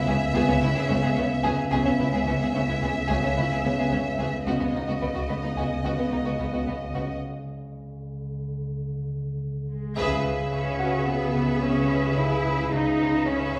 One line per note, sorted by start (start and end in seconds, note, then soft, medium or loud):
0.00 1.68 C#2 medium
0.00 0.84 C#5 soft
0.00 1.68 E5 medium
0.00 0.29 F#5 medium
0.06 0.12 C#2 medium
0.06 0.33 C#3 soft
0.06 0.13 B3 medium
0.06 0.12 G#4 medium
0.34 0.39 C#2 medium
0.34 0.40 C#2 medium
0.34 0.61 C#3 medium
0.34 0.41 B3 medium
0.34 0.40 G#4 medium
0.48 0.53 C#2 soft
0.48 0.54 B3 soft
0.48 0.54 C#4 medium
0.61 0.67 C#2 soft
0.61 0.88 C#3 medium
0.61 0.68 B3 soft
0.61 0.67 E4 medium
0.75 0.81 C#2 medium
0.75 0.82 B3 medium
0.75 0.81 G#4 medium
0.88 0.95 C#2 soft
0.88 1.15 C#3 soft
0.88 0.95 B3 medium
0.88 0.94 C#4 soft
1.02 1.09 C#2 medium
1.02 1.08 B3 medium
1.02 1.08 G#4 medium
1.15 1.22 C#2 soft
1.15 1.43 C#3 soft
1.15 1.23 B3 medium
1.15 1.21 C#4 soft
1.43 1.49 C#2 medium
1.43 1.50 C#2 medium
1.43 1.71 C#3 soft
1.43 1.50 B3 medium
1.43 1.49 G#4 medium
1.71 1.77 C#2 medium
1.71 4.43 C#2 medium
1.71 1.77 C#2 medium
1.71 1.98 C#3 medium
1.71 1.77 B3 medium
1.71 1.76 G#4 medium
1.71 4.43 E5 medium
1.85 1.91 C#2 soft
1.85 1.92 B3 soft
1.85 1.90 C#4 soft
1.99 2.04 C#2 soft
1.99 2.05 C#2 soft
1.99 2.25 C#3 soft
1.99 2.05 B3 soft
1.99 2.04 E4 soft
2.12 2.18 C#2 medium
2.12 2.19 B3 medium
2.12 2.18 G#4 medium
2.26 2.32 C#2 soft
2.26 2.53 C#3 soft
2.26 2.33 B3 soft
2.26 2.32 C#4 soft
2.39 2.45 C#2 medium
2.39 2.47 B3 medium
2.39 2.46 G#4 medium
2.54 2.59 C#2 soft
2.54 2.60 C#2 soft
2.54 2.81 C#3 soft
2.54 2.61 B3 soft
2.54 2.60 C#4 soft
2.67 2.73 C#2 soft
2.67 2.74 B3 soft
2.67 2.73 E4 soft
2.81 2.87 C#2 medium
2.81 3.09 C#3 soft
2.81 2.88 B3 medium
2.81 2.87 G#4 medium
3.08 3.14 C#2 medium
3.08 3.15 C#2 medium
3.08 3.36 C#3 medium
3.08 3.15 B3 medium
3.08 3.14 G#4 medium
3.08 4.70 C#5 soft
3.22 3.28 C#2 soft
3.22 3.29 B3 soft
3.22 3.29 C#4 soft
3.37 3.42 C#2 soft
3.37 3.64 C#3 soft
3.37 3.42 B3 soft
3.37 3.43 E4 soft
3.50 3.55 C#2 medium
3.50 3.56 B3 medium
3.50 3.56 G#4 soft
3.64 3.70 C#2 soft
3.64 3.91 C#3 soft
3.64 3.70 B3 soft
3.64 3.70 C#4 soft
3.78 3.84 C#2 medium
3.78 3.84 B3 medium
3.78 3.84 G#4 medium
3.91 3.97 C#2 soft
3.91 4.18 C#3 soft
3.91 3.97 B3 soft
3.91 3.97 C#4 soft
4.19 4.24 C#2 soft
4.19 4.25 C#2 medium
4.19 4.46 C#3 soft
4.19 4.25 B3 medium
4.19 4.24 G#4 soft
4.46 4.52 C#2 medium
4.46 4.52 C#2 soft
4.46 7.18 C#2 medium
4.46 4.73 C#3 medium
4.46 4.52 B3 soft
4.46 4.53 F#4 medium
4.46 7.18 D#5 soft
4.60 4.66 C#2 soft
4.60 4.66 B3 soft
4.60 4.67 B3 soft
4.74 4.80 C#2 soft
4.74 5.01 C#3 soft
4.74 4.81 B3 soft
4.74 4.80 D#4 soft
4.87 4.93 C#2 soft
4.87 4.94 B3 soft
4.87 4.93 F#4 soft
5.01 5.07 C#2 soft
5.01 5.08 C#2 soft
5.01 5.28 C#3 soft
5.01 5.07 B3 soft
5.01 5.08 B3 soft
5.15 5.21 C#2 soft
5.15 5.21 B3 soft
5.15 5.21 F#4 soft
5.29 5.35 C#2 soft
5.29 5.55 C#3 soft
5.29 5.34 B3 soft
5.29 5.35 B3 soft
5.43 5.49 C#2 soft
5.43 5.49 B3 soft
5.43 5.48 D#4 soft
5.56 5.62 C#2 soft
5.56 5.83 C#3 soft
5.56 5.63 B3 soft
5.56 5.62 F#4 soft
5.56 7.18 G#5 soft
5.84 5.90 C#2 soft
5.84 6.10 C#3 soft
5.84 5.90 B3 soft
5.84 5.90 F#4 soft
5.98 6.04 C#2 soft
5.98 6.04 B3 soft
6.11 6.17 C#2 soft
6.11 6.18 C#2 soft
6.11 6.37 C#3 soft
6.11 6.18 B3 soft
6.11 6.17 D#4 soft
6.25 6.32 C#2 soft
6.25 6.31 B3 soft
6.25 6.31 F#4 soft
6.39 6.45 C#2 soft
6.39 6.65 C#3 soft
6.39 6.45 B3 soft
6.53 6.59 C#2 soft
6.53 6.58 B3 soft
6.53 6.59 F#4 soft
6.66 6.72 C#2 soft
6.66 6.92 C#3 soft
6.66 6.72 B3 soft
6.66 6.73 B3 soft
6.94 7.00 C#2 soft
6.94 9.96 C#3 soft
6.94 7.00 B3 soft
6.94 7.00 F#4 soft
7.23 9.94 C#2 medium
9.70 10.48 G#3 soft
9.97 12.68 C#2 medium
9.97 10.23 C#3 soft
9.97 12.69 G#4 medium
9.97 12.68 B4 medium
9.97 12.68 E5 medium
10.25 10.51 C#3 soft
10.53 10.79 C#3 soft
10.53 11.07 C#4 medium
10.79 11.06 C#3 soft
10.79 12.41 F#4 soft
10.79 12.41 F#5 soft
11.07 11.33 C#3 soft
11.07 11.62 B3 medium
11.35 11.61 C#3 soft
11.62 11.89 C#3 soft
11.62 12.17 C#4 medium
11.90 12.15 C#3 soft
12.17 12.43 C#3 soft
12.17 12.73 E4 medium
12.44 12.71 C#3 soft
12.72 13.60 C#2 soft
12.72 13.60 C#2 medium
12.72 12.99 C#3 medium
12.72 13.27 D#4 medium
12.72 13.60 G#4 soft
12.72 13.60 B4 medium
12.72 13.60 E5 soft
13.00 13.26 C#3 soft
13.28 13.55 C#3 soft
13.28 13.60 C#4 medium
13.56 13.60 C#3 soft